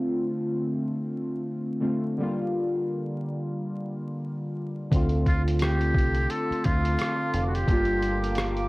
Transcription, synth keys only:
0.00 1.77 D3 medium
0.00 1.78 A3 medium
0.00 1.79 C4 medium
0.00 1.79 F4 medium
1.81 2.15 D3 medium
1.81 2.16 A3 soft
1.81 2.16 C4 soft
1.81 2.17 F4 soft
2.18 4.89 D3 medium
2.18 4.89 G3 medium
2.18 4.90 A#3 medium
2.23 4.91 F4 medium
4.91 7.63 D3 medium
4.91 7.64 A3 medium
4.91 7.65 C4 medium
4.96 7.66 F4 medium
7.66 8.69 D3 medium
7.66 8.69 G3 medium
7.66 8.69 A#3 medium
7.72 8.69 F4 medium

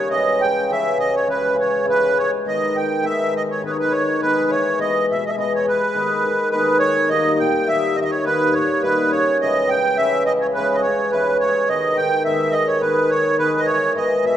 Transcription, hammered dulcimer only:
0.00 0.42 C#3 medium
0.10 0.46 E3 medium
0.10 0.70 G#3 medium
0.10 0.35 C#4 medium
0.10 0.35 E4 medium
0.44 0.96 C#3 medium
0.70 1.05 E3 medium
0.70 1.26 G#3 medium
0.70 0.94 C#4 medium
0.70 0.94 E4 medium
0.98 1.54 C#3 medium
1.26 1.63 E3 medium
1.26 1.85 G#3 medium
1.26 1.51 C#4 medium
1.26 1.51 E4 medium
1.55 2.21 C#3 medium
1.84 2.21 E3 medium
1.84 2.14 G#3 medium
1.84 2.09 C#4 medium
1.84 2.10 E4 medium
2.15 2.45 G#3 medium
2.45 2.73 D#3 medium
2.45 2.79 G#3 medium
2.45 2.69 B3 soft
2.45 2.69 D#4 medium
2.74 3.01 D#3 medium
3.02 3.60 D#3 medium
3.02 3.32 G#3 medium
3.02 3.26 B3 soft
3.02 3.27 D#4 medium
3.33 3.61 G#3 medium
3.61 3.91 D#3 medium
3.61 3.96 G#3 medium
3.61 3.85 B3 medium
3.61 3.85 D#4 medium
3.92 4.19 D#3 medium
4.20 4.54 D#3 medium
4.20 4.54 G#3 medium
4.20 4.44 B3 medium
4.20 4.44 D#4 medium
4.51 4.77 E3 medium
4.79 5.12 E3 medium
4.79 5.36 G#3 medium
4.79 5.02 B3 medium
4.79 5.01 E4 medium
5.11 5.70 B2 medium
5.37 5.70 E3 medium
5.37 5.65 G#3 medium
5.37 5.60 B3 medium
5.37 5.60 E4 medium
5.66 5.94 G#3 medium
5.95 6.24 D#3 medium
5.95 6.27 G#3 medium
5.95 6.18 B3 medium
5.95 6.18 D#4 medium
6.25 6.51 D#3 medium
6.52 6.81 D#3 medium
6.52 6.85 G#3 medium
6.52 6.75 B3 medium
6.52 6.75 D#4 medium
6.82 7.08 D#3 medium
7.09 7.43 D#3 medium
7.09 7.67 G3 medium
7.09 7.32 A#3 medium
7.09 7.32 D#4 medium
7.40 7.71 A#2 medium
7.67 7.96 D#3 medium
7.67 8.00 G3 medium
7.67 7.90 A#3 medium
7.67 7.90 D#4 medium
7.97 8.24 D#3 medium
8.25 8.58 D#3 medium
8.25 8.81 G3 medium
8.25 8.47 A#3 medium
8.25 8.48 D#4 medium
8.57 8.86 A#2 medium
8.82 9.15 D#3 medium
8.82 9.15 G3 medium
8.82 9.05 A#3 medium
8.82 9.05 D#4 medium
9.12 9.70 C#3 medium
9.42 9.72 E3 medium
9.42 9.98 G#3 soft
9.42 9.63 C#4 medium
9.42 9.64 E4 medium
9.71 10.26 C#3 medium
9.99 10.30 E3 medium
9.99 10.57 G#3 medium
9.99 10.20 C#4 medium
9.99 10.21 E4 medium
10.28 10.86 C#3 medium
10.57 10.87 E3 medium
10.57 11.12 G#3 medium
10.57 10.78 C#4 medium
10.57 10.78 E4 medium
10.87 11.44 C#3 medium
11.13 11.44 E3 medium
11.13 11.42 G#3 medium
11.13 11.34 C#4 medium
11.13 11.35 E4 medium
11.43 11.68 G#3 medium
11.69 11.97 D#3 medium
11.69 12.01 G#3 medium
11.69 11.91 B3 medium
11.69 11.92 D#4 medium
11.98 12.25 D#3 medium
12.26 12.80 D#3 medium
12.26 12.52 G#3 medium
12.26 12.48 B3 soft
12.26 12.48 D#4 medium
12.53 12.80 G#3 medium
12.81 13.10 D#3 medium
12.81 13.15 G#3 medium
12.81 13.04 B3 medium
12.81 13.05 D#4 medium
13.11 13.37 D#3 medium
13.39 13.72 D#3 medium
13.39 13.72 G#3 medium
13.39 13.61 B3 medium
13.39 13.62 D#4 medium
13.68 13.94 E3 medium
13.95 14.29 E3 medium
13.95 14.37 G#3 medium
13.95 14.18 B3 medium
13.95 14.18 E4 medium
14.24 14.37 B2 medium

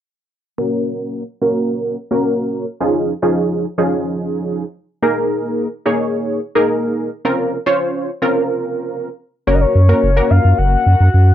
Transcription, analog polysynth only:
0.58 1.23 A#3 medium
0.58 1.23 C#4 medium
0.58 1.23 F#4 medium
0.58 1.23 A#4 medium
1.42 1.96 A#3 medium
1.42 1.96 C#4 medium
1.42 1.96 F#4 medium
1.42 1.96 A#4 medium
2.11 2.65 A#3 medium
2.11 2.65 C#4 medium
2.11 2.65 F#4 medium
2.11 2.65 A#4 loud
2.80 3.13 F3 medium
2.80 3.13 C#4 medium
2.80 3.13 D#4 medium
2.80 3.13 F4 medium
2.80 3.13 G#4 medium
3.22 3.65 F3 medium
3.22 3.66 C#4 medium
3.22 3.66 D#4 medium
3.22 3.66 F4 medium
3.22 3.66 G#4 medium
3.78 4.64 F3 medium
3.78 4.64 C#4 medium
3.78 4.64 D#4 medium
3.78 4.64 F4 medium
3.78 4.64 G#4 medium
5.03 5.68 A#3 medium
5.03 5.68 D#4 medium
5.03 5.68 G#4 medium
5.03 5.68 A#4 medium
5.86 6.40 A#3 medium
5.86 6.40 D#4 medium
5.86 6.40 G#4 medium
5.86 6.40 C#5 medium
6.55 7.10 A#3 medium
6.55 7.10 D#4 medium
6.55 7.10 G#4 medium
6.55 7.10 A#4 medium
7.25 7.57 C4 medium
7.25 7.58 C#4 medium
7.25 7.58 F4 medium
7.25 7.58 A#4 medium
7.66 8.10 C#4 medium
7.66 8.10 F4 medium
7.66 8.10 C5 medium
7.66 8.10 C#5 medium
8.22 9.09 C4 medium
8.22 9.09 C#4 medium
8.22 9.09 F4 medium
8.22 9.09 A#4 medium
9.47 9.80 A#3 medium
9.47 9.80 C#4 medium
9.47 9.80 F#4 medium
9.47 9.80 A#4 medium
9.89 10.10 A#3 medium
9.89 10.10 C#4 medium
9.89 10.11 F#4 medium
9.89 10.11 A#4 medium
10.16 11.03 A#3 medium
10.16 11.03 C#4 medium
10.16 11.03 F#4 medium
10.16 11.03 A#4 medium

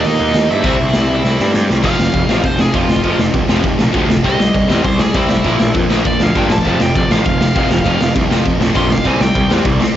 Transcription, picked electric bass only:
0.05 0.18 D#2 medium
0.20 0.33 D#2 medium
0.34 0.48 D#2 loud
0.51 0.63 G2 medium
0.64 0.78 C2 loud
0.80 0.93 C2 medium
0.95 1.22 C2 medium
1.24 1.38 C2 medium
1.40 1.54 G2 medium
1.55 1.69 G2 loud
1.71 1.83 C2 medium
1.84 1.93 F1 medium
2.00 2.09 F1 medium
2.14 2.24 F1 medium
2.29 2.39 A1 medium
2.44 2.63 F1 medium
2.74 2.84 F1 medium
2.89 2.99 F1 medium
3.04 3.14 F1 medium
3.19 3.29 F1 medium
3.34 3.44 C2 medium
3.50 3.59 F1 medium
3.64 3.73 F1 medium
3.79 3.89 A#1 medium
3.94 4.13 D2 medium
4.24 4.34 C2 medium
4.40 4.49 C2 medium
4.55 4.64 C2 medium
4.70 4.80 E2 medium
4.84 5.04 C2 medium
5.15 5.24 C2 medium
5.29 5.39 C2 medium
5.45 5.54 A#1 medium
5.61 5.70 A#1 medium
5.75 5.85 F2 medium
5.91 6.00 A#1 medium
6.05 6.15 A#1 medium
6.21 6.30 D2 medium
6.35 6.54 G2 medium
6.65 6.75 F1 medium
6.82 6.91 F1 medium
6.95 7.05 F1 medium
7.11 7.20 A1 medium
7.26 7.45 F1 loud
7.56 7.65 F1 medium
7.70 7.79 F1 medium
7.86 7.95 F1 loud
8.01 8.10 F1 medium
8.16 8.25 C2 medium
8.30 8.40 F1 medium
8.46 8.55 F1 medium
8.60 8.70 A#1 medium
8.75 8.94 A#1 medium
9.05 9.15 C2 loud
9.20 9.29 C2 medium
9.35 9.45 C2 medium
9.50 9.60 E2 medium
9.65 9.84 C2 medium

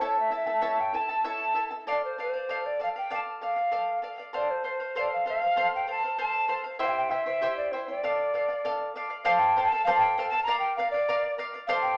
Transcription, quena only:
0.04 0.18 C#5 medium
0.20 0.33 E5 medium
0.36 0.82 E5 medium
0.81 0.97 G5 medium
0.96 1.26 A5 medium
1.29 1.70 A5 medium
1.90 2.03 D5 medium
2.05 2.18 C5 medium
2.21 2.68 C5 medium
2.66 2.80 D5 medium
2.83 2.89 F5 medium
2.98 3.11 G5 medium
3.14 3.20 A5 medium
3.43 4.00 F5 medium
4.35 4.52 D5 medium
4.51 4.65 C5 medium
4.68 4.95 C5 medium
4.98 5.11 D5 medium
5.13 5.26 F5 medium
5.29 5.70 F5 medium
5.75 5.88 G5 medium
5.91 6.18 A5 medium
6.21 6.62 A5 medium
6.82 6.90 E5 medium
6.82 6.86 G5 medium
6.89 6.95 G5 medium
6.97 7.12 G5 medium
7.11 7.56 E5 medium
7.57 7.73 D5 medium
7.72 7.87 C5 medium
7.89 8.91 D5 medium
9.24 9.41 F5 medium
9.39 9.70 G5 medium
9.69 9.84 A5 medium
9.85 9.91 F5 medium
9.97 10.27 G5 medium
10.29 10.43 A5 loud
10.43 10.58 A#5 medium
10.59 10.74 G5 medium
10.76 10.90 F5 medium
10.91 11.33 D5 medium
11.67 11.73 F5 medium
11.82 11.97 G5 medium

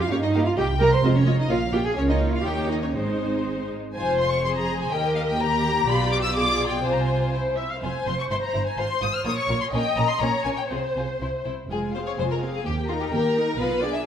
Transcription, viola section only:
0.11 0.19 A#3 medium
0.11 0.19 G4 medium
0.35 0.43 A#3 medium
0.35 0.43 G4 medium
0.57 0.66 G3 medium
0.57 0.65 G4 medium
0.80 0.88 G3 medium
0.80 0.89 G4 medium
1.04 1.12 G#3 medium
1.04 1.12 F4 medium
1.26 1.34 G#3 medium
1.26 1.35 F4 medium
1.50 1.58 A#3 medium
1.50 1.58 F4 medium
1.73 1.81 A#3 soft
1.73 1.81 F4 medium
1.97 2.42 A#3 medium
1.97 2.42 F4 medium
2.45 2.94 A#3 soft
2.45 2.94 D#4 medium
2.95 3.73 G#3 soft
2.95 3.73 D#4 soft
3.95 4.40 C5 medium
4.45 4.92 G#4 medium
4.93 5.39 A#4 medium
5.41 6.34 G4 medium
6.37 6.85 G#4 medium
6.84 7.27 C5 medium
7.33 7.56 C5 soft
7.58 7.70 E5 soft
7.70 7.82 F5 soft
7.82 8.74 C5 medium
8.78 9.24 C5 medium
9.26 9.72 C#5 medium
9.73 10.20 D#5 medium
10.21 10.71 C#5 medium
10.70 11.46 C5 soft
11.70 11.93 G#3 soft
11.70 11.93 F4 soft
11.95 12.19 C4 soft
11.95 12.19 G#4 soft
12.20 12.43 G#3 soft
12.20 12.43 F4 soft
12.43 12.66 C4 soft
12.43 12.67 G#4 soft
12.66 12.88 A#3 soft
12.66 12.88 G4 soft
12.90 13.13 D#4 soft
12.90 13.13 A#4 soft
13.14 13.37 A#3 soft
13.14 13.36 G4 soft
13.36 13.60 D#4 soft
13.36 13.59 A#4 soft
13.60 13.82 B3 soft
13.60 13.82 F4 soft
13.83 14.06 D4 soft
13.83 14.06 G#4 soft

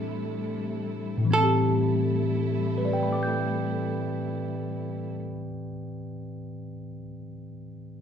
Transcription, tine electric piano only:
0.00 1.16 A2 medium
0.00 1.24 E3 soft
0.00 1.30 G3 soft
0.00 1.29 B3 soft
0.00 1.31 C4 soft
0.00 1.30 D4 soft
0.00 1.31 G4 medium
0.00 1.32 A4 soft
1.18 5.07 A2 medium
1.25 5.14 E3 soft
1.31 5.20 B3 medium
1.37 5.26 C4 soft
1.43 5.33 G4 medium
2.78 6.63 B4 soft
2.85 6.71 D5 soft
2.93 6.79 G5 soft
3.03 6.88 B5 soft
3.13 6.98 D6 soft
3.23 7.08 G6 soft

